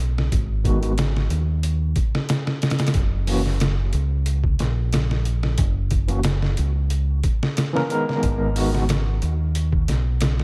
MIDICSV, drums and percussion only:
0, 0, Header, 1, 2, 480
1, 0, Start_track
1, 0, Key_signature, 5, "minor"
1, 0, Tempo, 659341
1, 227, Time_signature, 4, 2, 24, 8
1, 7597, End_track
2, 0, Start_track
2, 0, Title_t, "Drums"
2, 133, Note_on_c, 9, 38, 46
2, 206, Note_off_c, 9, 38, 0
2, 233, Note_on_c, 9, 36, 102
2, 234, Note_on_c, 9, 42, 77
2, 305, Note_off_c, 9, 36, 0
2, 307, Note_off_c, 9, 42, 0
2, 471, Note_on_c, 9, 36, 81
2, 475, Note_on_c, 9, 42, 62
2, 544, Note_off_c, 9, 36, 0
2, 547, Note_off_c, 9, 42, 0
2, 601, Note_on_c, 9, 42, 43
2, 674, Note_off_c, 9, 42, 0
2, 711, Note_on_c, 9, 42, 79
2, 719, Note_on_c, 9, 38, 111
2, 784, Note_off_c, 9, 42, 0
2, 792, Note_off_c, 9, 38, 0
2, 848, Note_on_c, 9, 38, 45
2, 921, Note_off_c, 9, 38, 0
2, 949, Note_on_c, 9, 42, 63
2, 1022, Note_off_c, 9, 42, 0
2, 1188, Note_on_c, 9, 42, 86
2, 1261, Note_off_c, 9, 42, 0
2, 1425, Note_on_c, 9, 42, 60
2, 1427, Note_on_c, 9, 36, 89
2, 1497, Note_off_c, 9, 42, 0
2, 1499, Note_off_c, 9, 36, 0
2, 1564, Note_on_c, 9, 38, 54
2, 1637, Note_off_c, 9, 38, 0
2, 1665, Note_on_c, 9, 42, 80
2, 1673, Note_on_c, 9, 38, 106
2, 1738, Note_off_c, 9, 42, 0
2, 1746, Note_off_c, 9, 38, 0
2, 1799, Note_on_c, 9, 38, 53
2, 1872, Note_off_c, 9, 38, 0
2, 1906, Note_on_c, 9, 42, 63
2, 1914, Note_on_c, 9, 38, 80
2, 1967, Note_off_c, 9, 42, 0
2, 1967, Note_on_c, 9, 42, 57
2, 1975, Note_off_c, 9, 38, 0
2, 1975, Note_on_c, 9, 38, 79
2, 2028, Note_off_c, 9, 42, 0
2, 2028, Note_on_c, 9, 42, 67
2, 2036, Note_off_c, 9, 38, 0
2, 2036, Note_on_c, 9, 38, 89
2, 2087, Note_off_c, 9, 42, 0
2, 2087, Note_on_c, 9, 42, 66
2, 2095, Note_off_c, 9, 38, 0
2, 2095, Note_on_c, 9, 38, 89
2, 2139, Note_off_c, 9, 42, 0
2, 2139, Note_on_c, 9, 42, 84
2, 2143, Note_on_c, 9, 36, 109
2, 2167, Note_off_c, 9, 38, 0
2, 2212, Note_off_c, 9, 42, 0
2, 2216, Note_off_c, 9, 36, 0
2, 2383, Note_on_c, 9, 46, 73
2, 2456, Note_off_c, 9, 46, 0
2, 2517, Note_on_c, 9, 38, 41
2, 2590, Note_off_c, 9, 38, 0
2, 2622, Note_on_c, 9, 42, 77
2, 2630, Note_on_c, 9, 38, 109
2, 2695, Note_off_c, 9, 42, 0
2, 2703, Note_off_c, 9, 38, 0
2, 2859, Note_on_c, 9, 42, 62
2, 2932, Note_off_c, 9, 42, 0
2, 3100, Note_on_c, 9, 42, 85
2, 3173, Note_off_c, 9, 42, 0
2, 3229, Note_on_c, 9, 36, 85
2, 3302, Note_off_c, 9, 36, 0
2, 3343, Note_on_c, 9, 42, 60
2, 3351, Note_on_c, 9, 38, 39
2, 3415, Note_off_c, 9, 42, 0
2, 3423, Note_off_c, 9, 38, 0
2, 3586, Note_on_c, 9, 42, 75
2, 3594, Note_on_c, 9, 38, 99
2, 3659, Note_off_c, 9, 42, 0
2, 3667, Note_off_c, 9, 38, 0
2, 3720, Note_on_c, 9, 38, 44
2, 3793, Note_off_c, 9, 38, 0
2, 3825, Note_on_c, 9, 42, 64
2, 3898, Note_off_c, 9, 42, 0
2, 3955, Note_on_c, 9, 38, 44
2, 4027, Note_off_c, 9, 38, 0
2, 4060, Note_on_c, 9, 42, 88
2, 4063, Note_on_c, 9, 36, 100
2, 4132, Note_off_c, 9, 42, 0
2, 4136, Note_off_c, 9, 36, 0
2, 4299, Note_on_c, 9, 42, 64
2, 4304, Note_on_c, 9, 36, 88
2, 4372, Note_off_c, 9, 42, 0
2, 4377, Note_off_c, 9, 36, 0
2, 4429, Note_on_c, 9, 42, 44
2, 4502, Note_off_c, 9, 42, 0
2, 4539, Note_on_c, 9, 42, 86
2, 4547, Note_on_c, 9, 38, 103
2, 4612, Note_off_c, 9, 42, 0
2, 4620, Note_off_c, 9, 38, 0
2, 4677, Note_on_c, 9, 38, 42
2, 4750, Note_off_c, 9, 38, 0
2, 4784, Note_on_c, 9, 42, 63
2, 4857, Note_off_c, 9, 42, 0
2, 5025, Note_on_c, 9, 42, 83
2, 5098, Note_off_c, 9, 42, 0
2, 5267, Note_on_c, 9, 42, 62
2, 5268, Note_on_c, 9, 36, 85
2, 5340, Note_off_c, 9, 42, 0
2, 5341, Note_off_c, 9, 36, 0
2, 5408, Note_on_c, 9, 38, 56
2, 5480, Note_off_c, 9, 38, 0
2, 5510, Note_on_c, 9, 42, 80
2, 5518, Note_on_c, 9, 38, 98
2, 5583, Note_off_c, 9, 42, 0
2, 5591, Note_off_c, 9, 38, 0
2, 5653, Note_on_c, 9, 38, 53
2, 5726, Note_off_c, 9, 38, 0
2, 5752, Note_on_c, 9, 42, 60
2, 5825, Note_off_c, 9, 42, 0
2, 5891, Note_on_c, 9, 38, 38
2, 5964, Note_off_c, 9, 38, 0
2, 5991, Note_on_c, 9, 42, 84
2, 5992, Note_on_c, 9, 36, 106
2, 6063, Note_off_c, 9, 42, 0
2, 6065, Note_off_c, 9, 36, 0
2, 6231, Note_on_c, 9, 46, 72
2, 6304, Note_off_c, 9, 46, 0
2, 6367, Note_on_c, 9, 38, 43
2, 6440, Note_off_c, 9, 38, 0
2, 6471, Note_on_c, 9, 42, 83
2, 6479, Note_on_c, 9, 38, 108
2, 6544, Note_off_c, 9, 42, 0
2, 6552, Note_off_c, 9, 38, 0
2, 6712, Note_on_c, 9, 42, 64
2, 6785, Note_off_c, 9, 42, 0
2, 6953, Note_on_c, 9, 42, 89
2, 7026, Note_off_c, 9, 42, 0
2, 7079, Note_on_c, 9, 36, 85
2, 7152, Note_off_c, 9, 36, 0
2, 7194, Note_on_c, 9, 42, 69
2, 7202, Note_on_c, 9, 38, 41
2, 7267, Note_off_c, 9, 42, 0
2, 7275, Note_off_c, 9, 38, 0
2, 7430, Note_on_c, 9, 42, 82
2, 7438, Note_on_c, 9, 38, 103
2, 7502, Note_off_c, 9, 42, 0
2, 7510, Note_off_c, 9, 38, 0
2, 7568, Note_on_c, 9, 38, 43
2, 7597, Note_off_c, 9, 38, 0
2, 7597, End_track
0, 0, End_of_file